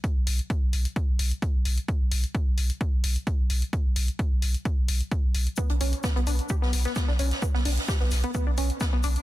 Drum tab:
HH |x-oxx-oxx-oxx-ox|x-oxx-oxx-oxx-ox|x-oxx-oxx-oxx-ox|xxoxxxoxx-oxx-ox|
SH |----------------|----------------|----------------|x-x-x-x-x-x-x-x-|
SD |----------------|----------------|----------------|----o----o-ooo-o|
BD |o---o---o---o---|o---o---o---o---|o---o---o---o---|o---o---o---o---|

HH |x-oxx-oxx-oxx-ox|
SH |x---x-x-x-x-x-x-|
SD |-o-oooo-----o---|
BD |o---o---o---o---|